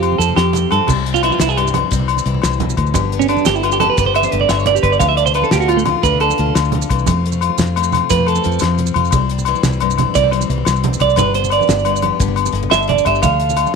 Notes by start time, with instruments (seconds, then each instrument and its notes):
Already playing: fingered electric bass F2, steel-string acoustic guitar F2 C3 F3 A3 C4, clean electric guitar G4
0.03 steel-string acoustic guitar F4, closed hi-hat, low agogo
0.12 high conga
0.18 fingered electric bass F2, steel-string acoustic guitar F3, clean electric guitar A4, closed hi-hat, maracas
0.29 low conga
0.36 fingered electric bass F2, clean electric guitar G4, snare, closed hi-hat, low agogo
0.53 steel-string acoustic guitar C3, closed hi-hat, low conga, maracas
0.71 fingered electric bass G2, steel-string acoustic guitar C4, clean electric guitar A4, closed hi-hat, low agogo
0.87 fingered electric bass C2, steel-string acoustic guitar C3 G3 C4 E4, kick, crash, high conga, low conga, low agogo, maracas
1.06 steel-string acoustic guitar G3, closed hi-hat
1.14 clean electric guitar F4, low conga, maracas
1.23 steel-string acoustic guitar E3 C4, clean electric guitar E4, closed hi-hat, low agogo
1.30 clean electric guitar F4, high conga, maracas
1.39 fingered electric bass C2, steel-string acoustic guitar C4, clean electric guitar E4, snare, closed hi-hat, low conga, maracas
1.49 clean electric guitar G#4, maracas
1.57 steel-string acoustic guitar G2 G3, clean electric guitar G4, closed hi-hat, low agogo
1.66 low conga, maracas
1.74 steel-string acoustic guitar E4, closed hi-hat, high conga, low conga, low agogo
1.91 fingered electric bass C2, steel-string acoustic guitar C3 G3 C4 E4, kick, closed hi-hat, maracas
2.00 low conga
2.08 steel-string acoustic guitar G3, closed hi-hat, low agogo
2.17 high conga, maracas
2.26 fingered electric bass C2, steel-string acoustic guitar E3 E4, closed hi-hat
2.34 low conga
2.42 fingered electric bass C2, steel-string acoustic guitar C3, snare, closed hi-hat, low conga, low agogo, maracas
2.53 maracas
2.60 steel-string acoustic guitar B2, closed hi-hat, high conga, low conga
2.70 maracas
2.77 fingered electric bass D2, steel-string acoustic guitar A2, kick, closed hi-hat, low agogo
2.87 maracas
2.94 fingered electric bass G1, steel-string acoustic guitar G2 B3 D4 G4, kick, closed hi-hat, high conga, low conga, low agogo, maracas
3.12 steel-string acoustic guitar B3, closed hi-hat
3.19 clean electric guitar C#4, low conga, maracas
3.28 steel-string acoustic guitar D3 G4, clean electric guitar D4, closed hi-hat, low agogo
3.37 high conga, maracas
3.45 fingered electric bass G1, steel-string acoustic guitar D4, clean electric guitar G4, snare, closed hi-hat, low conga, maracas
3.55 clean electric guitar E4, maracas
3.63 steel-string acoustic guitar G2 B3, clean electric guitar F4, closed hi-hat, low agogo
3.72 clean electric guitar G4, low conga, maracas
3.80 steel-string acoustic guitar G4, clean electric guitar A4, closed hi-hat, high conga, low conga, low agogo
3.90 clean electric guitar B4
3.97 fingered electric bass G1, steel-string acoustic guitar B3 D4 G4, clean electric guitar B4, muted steel-string acoustic guitar stroke, kick, closed hi-hat, maracas
4.05 clean electric guitar C5, low conga
4.14 steel-string acoustic guitar B3, clean electric guitar E5, closed hi-hat, low conga, low agogo
4.23 clean electric guitar C5, high conga, maracas
4.32 fingered electric bass G1, steel-string acoustic guitar D3 G4, clean electric guitar B4, closed hi-hat
4.40 clean electric guitar D5, low conga
4.48 fingered electric bass G1, steel-string acoustic guitar A2, clean electric guitar E5, snare, closed hi-hat, low conga, low agogo, maracas
4.58 clean electric guitar C#5, maracas
4.66 steel-string acoustic guitar B2, clean electric guitar D5, closed hi-hat, high conga, low conga
4.75 clean electric guitar G4, maracas
4.83 fingered electric bass G1, steel-string acoustic guitar C3, clean electric guitar B4, kick, closed hi-hat, low agogo
4.92 clean electric guitar D5, maracas
4.99 fingered electric bass D2, steel-string acoustic guitar D3 D4 F4, clean electric guitar F5, kick, closed hi-hat, high conga, low conga, low agogo, maracas
5.09 clean electric guitar E5
5.17 steel-string acoustic guitar D4, clean electric guitar D5, closed hi-hat
5.26 clean electric guitar C5, low conga, maracas
5.34 steel-string acoustic guitar A3 F4, clean electric guitar B4, closed hi-hat, low agogo
5.42 clean electric guitar A4, high conga, maracas
5.51 fingered electric bass D2, steel-string acoustic guitar F4, clean electric guitar G4, snare, closed hi-hat, low conga, maracas
5.60 clean electric guitar F#4, maracas
5.68 steel-string acoustic guitar A2, clean electric guitar F4, closed hi-hat, low agogo
5.73 muted steel-string acoustic guitar stroke
5.77 clean electric guitar A3, low conga, maracas
5.85 steel-string acoustic guitar F4, closed hi-hat, high conga, low conga, low agogo
6.03 fingered electric bass D2, steel-string acoustic guitar D3 D4 F4, clean electric guitar B4, kick, closed hi-hat, maracas
6.12 low conga
6.20 steel-string acoustic guitar D4, clean electric guitar A4, closed hi-hat, low conga, low agogo
6.29 high conga, maracas
6.38 fingered electric bass D2, steel-string acoustic guitar A3 F4, closed hi-hat
6.46 low conga
6.55 fingered electric bass D2, steel-string acoustic guitar C3, snare, closed hi-hat, low conga, low agogo, maracas
6.65 maracas
6.72 steel-string acoustic guitar D3, closed hi-hat, high conga, low conga
6.82 maracas
6.90 fingered electric bass C2, steel-string acoustic guitar E3, kick, closed hi-hat, low agogo
6.99 maracas
7.06 fingered electric bass F2, steel-string acoustic guitar F2 A3 C4, kick, closed hi-hat, high conga, low conga, low agogo, maracas
7.11 steel-string acoustic guitar F4
7.26 steel-string acoustic guitar A3, closed hi-hat
7.32 low conga, maracas
7.41 steel-string acoustic guitar F4, muted steel-string acoustic guitar stroke, closed hi-hat, low agogo
7.50 high conga
7.58 fingered electric bass F2, steel-string acoustic guitar C4, snare, closed hi-hat, low conga, maracas
7.66 low conga, maracas
7.76 steel-string acoustic guitar C3 A3, closed hi-hat, low agogo
7.83 maracas
7.92 steel-string acoustic guitar F4, snare, closed hi-hat, high conga, low conga, low agogo, maracas
8.09 steel-string acoustic guitar F2 A3 C4 F4, fingered electric bass F2, clean electric guitar B4, kick, closed hi-hat, maracas
8.18 low conga
8.27 steel-string acoustic guitar A3, clean electric guitar A4, closed hi-hat, low agogo
8.35 high conga, maracas
8.44 fingered electric bass F2, steel-string acoustic guitar F3, muted steel-string acoustic guitar stroke, closed hi-hat, high conga, maracas
8.52 maracas
8.59 fingered electric bass F2, steel-string acoustic guitar C4, snare, closed hi-hat, high conga, low agogo, maracas
8.78 steel-string acoustic guitar A3, muted steel-string acoustic guitar stroke, closed hi-hat, low conga, maracas
8.86 maracas
8.94 fingered electric bass F2, steel-string acoustic guitar F4, closed hi-hat, low conga, low agogo
9.05 maracas
9.11 fingered electric bass C2, steel-string acoustic guitar G3 C4 E4, muted steel-string acoustic guitar stroke, kick, closed hi-hat, high conga, low conga, low agogo, maracas
9.29 steel-string acoustic guitar G3, closed hi-hat
9.39 low conga, maracas
9.45 steel-string acoustic guitar E3 E4, closed hi-hat, low agogo
9.55 high conga, maracas
9.63 fingered electric bass C2, steel-string acoustic guitar C4, snare, closed hi-hat, low conga, maracas
9.73 maracas
9.80 steel-string acoustic guitar G2 G3, closed hi-hat, low agogo
9.90 low conga, maracas
9.98 steel-string acoustic guitar E4, snare, closed hi-hat, high conga, low conga, low agogo
10.14 fingered electric bass C2, steel-string acoustic guitar C3 G3 C4 E4, clean electric guitar D5, kick, closed hi-hat, maracas
10.24 low conga
10.31 steel-string acoustic guitar G3, muted clean electric guitar stroke, closed hi-hat, low conga, low agogo
10.41 high conga, maracas
10.49 fingered electric bass C2, steel-string acoustic guitar E3 E4, closed hi-hat
10.58 low conga
10.65 fingered electric bass C2, steel-string acoustic guitar C4, snare, closed hi-hat, low agogo, maracas
10.76 maracas
10.83 steel-string acoustic guitar G3, muted steel-string acoustic guitar stroke, closed hi-hat, high conga, low conga
10.93 maracas
11.00 fingered electric bass C2, steel-string acoustic guitar E4, clean electric guitar D5, kick, closed hi-hat, low agogo
11.10 maracas
11.16 fingered electric bass G1, steel-string acoustic guitar G2 B3 D4 G4, clean electric guitar B4, kick, closed hi-hat, high conga, low conga, low agogo, maracas
11.34 steel-string acoustic guitar B3, clean electric guitar C5, closed hi-hat
11.44 low conga, maracas
11.50 clean electric guitar D5, closed hi-hat, low agogo
11.59 steel-string acoustic guitar G4, high conga, maracas
11.68 fingered electric bass G1, steel-string acoustic guitar D4, snare, closed hi-hat, low conga, maracas
11.79 maracas
11.85 steel-string acoustic guitar G2 B3, closed hi-hat, low agogo
11.95 low conga, maracas
12.02 steel-string acoustic guitar G4, closed hi-hat, high conga, low agogo
12.20 fingered electric bass G1, steel-string acoustic guitar G2 B3 D4 G4, kick, closed hi-hat, maracas
12.28 low conga
12.36 steel-string acoustic guitar B3, closed hi-hat, low agogo
12.46 high conga, maracas
12.52 fingered electric bass G1, steel-string acoustic guitar D3 E4, closed hi-hat
12.63 muted steel-string acoustic guitar stroke, low conga
12.70 fingered electric bass G1, steel-string acoustic guitar D4, clean electric guitar E5, snare, closed hi-hat, low agogo, maracas
12.82 maracas
12.88 steel-string acoustic guitar G2, clean electric guitar D5, closed hi-hat, high conga, low conga
12.98 maracas
13.05 fingered electric bass G1, steel-string acoustic guitar G4, clean electric guitar E5, kick, closed hi-hat, low agogo
13.15 maracas
13.22 fingered electric bass D2, steel-string acoustic guitar D3 D4 F4, clean electric guitar F5, kick, closed hi-hat, high conga, low conga, low agogo, maracas
13.40 steel-string acoustic guitar D4, closed hi-hat
13.49 low conga, maracas
13.56 steel-string acoustic guitar A3 F4, closed hi-hat, low agogo
13.66 high conga, maracas